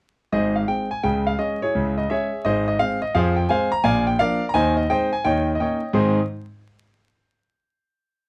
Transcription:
0.32 G#1 G#2 G#4 C5 D#5
0.56 F5
0.68 G#3 C4 G5
0.91 G#5
1.03 C#2 C#3 G5
1.27 F5
1.39 G#3 C#4 D#5
1.62 E4 G#4 C#5
1.75 C#2 C#3
1.98 D#5
2.10 G#3 C#4 G#4 C#5 E5
2.45 G#1 G#2 G#4 C5 D#5
2.68 D#5
2.79 G#3 C4 F5
3.02 D#5
3.15 F2 F3 G#4 C5 F5
3.36 G5
3.49 G#3 C4 C5 F5 G#5
3.72 A#5
3.84 A#1 A#2 D5 F5 G#5
4.07 G5
4.19 F3 A#3 D4 A#4 D5 F5
4.49 A#5
4.54 D#2 D#3 C5 D#5 G#5
4.77 D#5
4.90 G#3 C4 D#4 C5 D#5 G5
5.13 G#5
5.25 D#2 D#3 C#5 D#5 G5
5.55 D#5
5.60 A#3 C#4 D#4 C#5 D#5 G5
5.93 G#2 D#3 C4 D#4 G#4 C5 C6

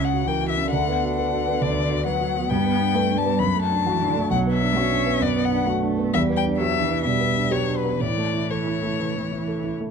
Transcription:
Already playing: C#2 C#3
0.00 C#4
0.04 F#5
0.14 F#4
0.25 E3 A#4 G5
0.42 F#4
0.49 E5
0.57 C#4
0.70 D2 D3 F#5
0.88 B3
1.03 F#4
1.16 B4 F#5
1.32 F#4
1.47 B3
1.61 D2 D5
1.77 D3
1.91 F#4
2.05 F#3 B4 F#5
2.21 F#4
2.37 B3
2.50 G2 B3 G5
2.65 B3
2.81 D4
2.95 A3 B4
3.10 D4
3.17 G3 A5
3.25 B3
3.39 F#2 F#3 B5
3.55 A3
3.63 A5
3.71 D4
3.84 E3 F#4
4.01 D4
4.08 D3
4.17 A3
4.30 B1 F#3 F#5
4.46 B3
4.53 E5
4.61 D4
4.76 C#4 F#4
4.91 D4
5.06 B3
5.21 F#2 B3 D5
5.36 B3
5.45 F#5
5.51 D4
5.66 A3 F#4
5.82 D4
5.98 B3
6.13 E2 G3 E5
6.29 B3
6.36 G5
6.45 D4
6.58 F#3 G4 E5
6.76 D4
6.81 E3
6.89 B3
7.04 B2 G3 E5
7.20 B3
7.36 D4
7.51 F#3 G4 C#5
7.68 D4
7.77 B4
7.84 B3
8.00 A2 E3 D5
8.17 A3
8.34 E4
8.51 A4 C#5
8.67 E4
8.82 A3
8.99 E3
9.16 A3
9.32 E4
9.48 A4
9.64 E4
9.81 A3

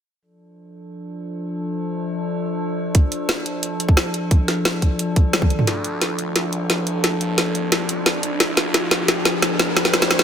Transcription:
0.22 F3 D4 A4
2.95 kick, closed hi-hat
3.12 closed hi-hat
3.29 snare, closed hi-hat
3.46 closed hi-hat
3.63 closed hi-hat
3.80 closed hi-hat
3.89 kick
3.97 snare, closed hi-hat
4.14 closed hi-hat
4.31 kick, closed hi-hat
4.48 snare, closed hi-hat
4.65 snare, closed hi-hat
4.82 kick, closed hi-hat
4.99 closed hi-hat
5.16 kick, closed hi-hat
5.33 snare, closed hi-hat, high tom
5.42 kick, high tom
5.50 closed hi-hat
5.59 mid tom
5.67 D2 F3 D4 A4, snare, closed hi-hat, riser
5.84 closed hi-hat
6.01 snare, closed hi-hat
6.19 D2, closed hi-hat
6.36 snare, closed hi-hat
6.53 closed hi-hat
6.70 A1, snare, closed hi-hat
6.87 closed hi-hat
7.04 snare, closed hi-hat
7.21 A1, closed hi-hat
7.38 snare, closed hi-hat
7.55 closed hi-hat
7.72 C2, snare, closed hi-hat
7.89 closed hi-hat
8.06 snare, closed hi-hat
8.23 closed hi-hat
8.40 D2 G4, snare, closed hi-hat
8.57 snare, closed hi-hat
8.74 snare, closed hi-hat
8.91 D2, snare, closed hi-hat
9.08 snare, closed hi-hat
9.25 snare, closed hi-hat
9.42 A1, snare, closed hi-hat
9.59 snare, closed hi-hat
9.77 snare, closed hi-hat
9.85 snare
9.94 snare, closed hi-hat
10.02 snare
10.11 snare, closed hi-hat
10.19 snare

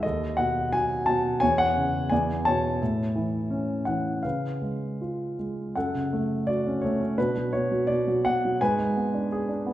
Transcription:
0.03 D#2 A4 D#5
0.37 B2 F#5
0.73 F#3 G#5
1.06 B2 A5
1.40 E2 C#5 G#5
1.58 F#5
1.76 C#3
2.10 E2 D5 G#5
2.45 B2 C#5 A5
2.82 A2
3.16 E3
3.50 C#4
3.85 E3 F#5
4.23 C#3 B4 F5
4.62 G#3
5.01 F4
5.39 G#3
5.76 F#2 A4 F#5
5.94 C#3
6.13 A3
6.47 F#4 D5
6.67 C#4
6.81 A3 C#5
7.00 C#4
7.18 B2 D4 B4
7.36 F#3
7.53 B2 C#5
7.71 F#3
7.87 B2 D5
8.07 F#3
8.25 B2 F#5
8.45 F#3
8.61 G#2 B4 G#5
8.79 G#3
8.97 B3
9.14 D4
9.32 G#4
9.49 D4
9.66 B3

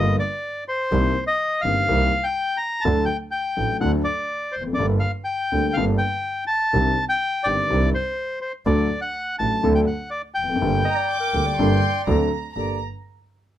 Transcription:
Already playing: G1 G2 D3 G3 A#3 F4 D#5
0.19 D5
0.68 C5
0.91 C2 C3 D#3 A#3 C4 G4
1.27 D#5
1.61 G1 G2 D#3 A#3 C4 F5
1.65 G4
1.88 C2 C3 D#3 A#3 C4 G4
2.24 G5
2.57 A#5
2.81 A5
2.85 D2 D3 F#3 A3 D4 A4
3.05 G5
3.31 G5
3.56 A1 A2 F#3 A3 D4 A4
3.81 D2 D3 F#3 A3 D4 A4 F#5
4.04 D5
4.52 C5
4.56 F1
4.61 E2
4.67 F2
4.73 F#2 D5
4.79 G1 G2 G3 A#3 D4 A4
5.00 F5
5.24 G5
5.52 D2 D3 G3 A#3 D4 A4
5.73 G1 G2 G3 A#3 D4 A4 F5
5.98 G5
6.47 A5
6.73 C2 C3 D#3 C4 D4 G4
7.09 G5
7.44 G1 G2 D#3 C4 D4 G4 D5
7.70 C2 C3 D#3 C4 D4 G4
7.94 C5
8.41 C5
8.66 D2 D3 F#3 A3 D4 A4 D5
9.01 F#5
9.39 A1 A2 F#3 A3 D4 A4 A5
9.63 D2 D3 F#3 A3 D4 A4
9.75 G5
9.87 F#5
10.10 D5
10.34 F1 G5
10.43 E2
10.49 F2
10.55 F#2
10.61 G1 G2 G3 A#3 D4 A4
10.84 D#5 A#5
10.96 D5
11.09 D6
11.20 A#4
11.34 D2 D3 G3 A#3 D4 A4
11.46 D5
11.57 G1 G2 G3 A#3 D4 A4 C6
12.07 D2 D3 F#3 C4 D4 A4 A#5
12.54 G1 G2 A#3 G4 A4 D5 A#5

